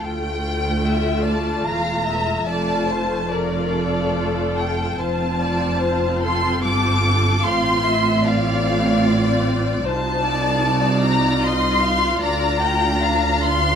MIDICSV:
0, 0, Header, 1, 6, 480
1, 0, Start_track
1, 0, Key_signature, -1, "minor"
1, 0, Tempo, 832178
1, 2, Time_signature, 3, 2, 24, 8
1, 2882, Tempo, 811908
1, 5282, Tempo, 795756
1, 5759, Key_signature, -2, "major"
1, 8115, End_track
2, 0, Start_track
2, 0, Title_t, "Violin section"
2, 0, Program_c, 0, 48
2, 1, Note_on_c, 0, 79, 67
2, 722, Note_off_c, 0, 79, 0
2, 724, Note_on_c, 0, 81, 62
2, 954, Note_off_c, 0, 81, 0
2, 955, Note_on_c, 0, 82, 64
2, 1421, Note_on_c, 0, 81, 67
2, 1430, Note_off_c, 0, 82, 0
2, 1902, Note_off_c, 0, 81, 0
2, 1909, Note_on_c, 0, 74, 62
2, 2634, Note_off_c, 0, 74, 0
2, 2634, Note_on_c, 0, 79, 60
2, 2878, Note_off_c, 0, 79, 0
2, 2881, Note_on_c, 0, 81, 65
2, 3600, Note_off_c, 0, 81, 0
2, 3608, Note_on_c, 0, 84, 72
2, 3838, Note_off_c, 0, 84, 0
2, 3853, Note_on_c, 0, 86, 76
2, 4318, Note_off_c, 0, 86, 0
2, 4325, Note_on_c, 0, 84, 79
2, 4804, Note_off_c, 0, 84, 0
2, 4811, Note_on_c, 0, 77, 70
2, 5526, Note_off_c, 0, 77, 0
2, 5752, Note_on_c, 0, 81, 83
2, 6452, Note_off_c, 0, 81, 0
2, 6475, Note_on_c, 0, 82, 79
2, 6718, Note_off_c, 0, 82, 0
2, 6721, Note_on_c, 0, 84, 84
2, 7192, Note_on_c, 0, 82, 82
2, 7198, Note_off_c, 0, 84, 0
2, 7906, Note_off_c, 0, 82, 0
2, 7916, Note_on_c, 0, 84, 85
2, 8115, Note_off_c, 0, 84, 0
2, 8115, End_track
3, 0, Start_track
3, 0, Title_t, "Violin section"
3, 0, Program_c, 1, 48
3, 481, Note_on_c, 1, 76, 48
3, 703, Note_off_c, 1, 76, 0
3, 708, Note_on_c, 1, 74, 41
3, 951, Note_off_c, 1, 74, 0
3, 963, Note_on_c, 1, 77, 46
3, 1184, Note_on_c, 1, 76, 46
3, 1192, Note_off_c, 1, 77, 0
3, 1422, Note_off_c, 1, 76, 0
3, 1427, Note_on_c, 1, 74, 49
3, 1671, Note_off_c, 1, 74, 0
3, 1672, Note_on_c, 1, 72, 46
3, 1917, Note_off_c, 1, 72, 0
3, 1918, Note_on_c, 1, 70, 45
3, 2153, Note_on_c, 1, 69, 51
3, 2159, Note_off_c, 1, 70, 0
3, 2876, Note_on_c, 1, 72, 46
3, 2878, Note_off_c, 1, 69, 0
3, 3121, Note_off_c, 1, 72, 0
3, 3127, Note_on_c, 1, 74, 48
3, 3358, Note_on_c, 1, 72, 51
3, 3359, Note_off_c, 1, 74, 0
3, 3598, Note_off_c, 1, 72, 0
3, 3606, Note_on_c, 1, 69, 52
3, 3829, Note_off_c, 1, 69, 0
3, 3836, Note_on_c, 1, 69, 55
3, 4309, Note_off_c, 1, 69, 0
3, 4311, Note_on_c, 1, 77, 55
3, 4557, Note_off_c, 1, 77, 0
3, 4561, Note_on_c, 1, 76, 55
3, 4798, Note_on_c, 1, 74, 64
3, 4802, Note_off_c, 1, 76, 0
3, 5755, Note_on_c, 1, 72, 58
3, 5757, Note_off_c, 1, 74, 0
3, 5992, Note_on_c, 1, 74, 65
3, 5996, Note_off_c, 1, 72, 0
3, 6702, Note_off_c, 1, 74, 0
3, 6716, Note_on_c, 1, 75, 59
3, 6955, Note_on_c, 1, 77, 60
3, 6956, Note_off_c, 1, 75, 0
3, 7180, Note_on_c, 1, 74, 61
3, 7196, Note_off_c, 1, 77, 0
3, 7426, Note_off_c, 1, 74, 0
3, 7435, Note_on_c, 1, 79, 61
3, 7667, Note_on_c, 1, 77, 58
3, 7679, Note_off_c, 1, 79, 0
3, 8115, Note_off_c, 1, 77, 0
3, 8115, End_track
4, 0, Start_track
4, 0, Title_t, "Viola section"
4, 0, Program_c, 2, 48
4, 0, Note_on_c, 2, 57, 46
4, 0, Note_on_c, 2, 65, 42
4, 1407, Note_off_c, 2, 65, 0
4, 1408, Note_off_c, 2, 57, 0
4, 1433, Note_on_c, 2, 65, 46
4, 1436, Note_on_c, 2, 57, 46
4, 1908, Note_off_c, 2, 57, 0
4, 1908, Note_off_c, 2, 65, 0
4, 1915, Note_on_c, 2, 57, 49
4, 1921, Note_on_c, 2, 65, 46
4, 2860, Note_off_c, 2, 57, 0
4, 2863, Note_off_c, 2, 65, 0
4, 2882, Note_on_c, 2, 65, 49
4, 2884, Note_on_c, 2, 60, 51
4, 4297, Note_off_c, 2, 65, 0
4, 4298, Note_off_c, 2, 60, 0
4, 4314, Note_on_c, 2, 65, 54
4, 4316, Note_on_c, 2, 60, 51
4, 4789, Note_off_c, 2, 65, 0
4, 4790, Note_off_c, 2, 60, 0
4, 4800, Note_on_c, 2, 60, 58
4, 4802, Note_on_c, 2, 65, 56
4, 5739, Note_off_c, 2, 60, 0
4, 5740, Note_off_c, 2, 65, 0
4, 5757, Note_on_c, 2, 63, 55
4, 5760, Note_on_c, 2, 65, 59
4, 7172, Note_off_c, 2, 63, 0
4, 7196, Note_on_c, 2, 62, 58
4, 8115, Note_off_c, 2, 62, 0
4, 8115, Note_off_c, 2, 65, 0
4, 8115, End_track
5, 0, Start_track
5, 0, Title_t, "Cello section"
5, 0, Program_c, 3, 48
5, 4, Note_on_c, 3, 38, 46
5, 936, Note_off_c, 3, 38, 0
5, 958, Note_on_c, 3, 40, 42
5, 1429, Note_on_c, 3, 41, 50
5, 1432, Note_off_c, 3, 40, 0
5, 2856, Note_off_c, 3, 41, 0
5, 2882, Note_on_c, 3, 41, 53
5, 3820, Note_off_c, 3, 41, 0
5, 3844, Note_on_c, 3, 43, 52
5, 4321, Note_on_c, 3, 45, 58
5, 4323, Note_off_c, 3, 43, 0
5, 5754, Note_on_c, 3, 36, 65
5, 5760, Note_off_c, 3, 45, 0
5, 7170, Note_off_c, 3, 36, 0
5, 7190, Note_on_c, 3, 38, 66
5, 8115, Note_off_c, 3, 38, 0
5, 8115, End_track
6, 0, Start_track
6, 0, Title_t, "Double bass section"
6, 0, Program_c, 4, 48
6, 0, Note_on_c, 4, 38, 46
6, 934, Note_off_c, 4, 38, 0
6, 960, Note_on_c, 4, 28, 39
6, 1432, Note_on_c, 4, 29, 49
6, 1433, Note_off_c, 4, 28, 0
6, 2857, Note_off_c, 4, 29, 0
6, 2874, Note_on_c, 4, 29, 51
6, 3816, Note_off_c, 4, 29, 0
6, 3834, Note_on_c, 4, 31, 48
6, 4317, Note_on_c, 4, 33, 54
6, 4318, Note_off_c, 4, 31, 0
6, 5757, Note_on_c, 4, 36, 60
6, 5758, Note_off_c, 4, 33, 0
6, 7172, Note_off_c, 4, 36, 0
6, 7199, Note_on_c, 4, 38, 58
6, 8115, Note_off_c, 4, 38, 0
6, 8115, End_track
0, 0, End_of_file